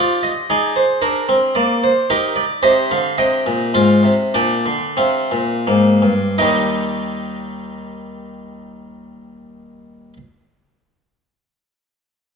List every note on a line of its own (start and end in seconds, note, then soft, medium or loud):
0.00 0.30 F4 loud
0.00 0.47 G4 medium
0.00 0.23 D5 medium
0.23 0.49 D#5 medium
0.50 0.83 D#4 loud
0.50 2.05 G#4 medium
0.50 0.76 D5 medium
0.76 1.02 C5 medium
1.02 1.28 D4 loud
1.02 1.35 A#4 medium
1.29 1.55 C4 loud
1.55 1.89 A#3 loud
1.55 1.81 D5 loud
1.84 2.09 C5 medium
2.10 2.43 D#4 loud
2.10 2.43 G4 medium
2.10 2.36 A#4 medium
2.36 2.62 D5 medium
2.63 2.90 C3 medium
2.63 3.72 G4 loud
2.63 2.97 C5 medium
2.63 2.89 D#5 loud
2.91 3.18 D3 medium
2.91 3.18 F5 medium
3.18 3.46 C3 medium
3.18 4.32 D#5 loud
3.18 3.54 G5 loud
3.46 3.74 A#2 medium
3.74 4.03 G#2 medium
3.74 4.12 F4 medium
3.74 4.12 F5 medium
4.03 4.33 C3 medium
4.34 4.65 A#2 medium
4.34 4.74 D4 medium
4.34 6.34 D5 medium
4.34 4.74 G5 medium
4.66 4.97 D3 medium
4.97 5.30 C3 medium
4.97 5.39 C4 medium
4.97 6.34 F5 medium
5.31 5.65 A#2 medium
5.67 6.01 G#2 medium
5.67 6.12 A#3 medium
6.02 6.38 G2 medium
6.38 10.13 D#2 medium
6.38 10.17 D#3 medium
6.38 10.17 G3 medium
6.38 10.14 D#4 medium
6.38 10.13 D#5 medium
6.38 10.13 G5 medium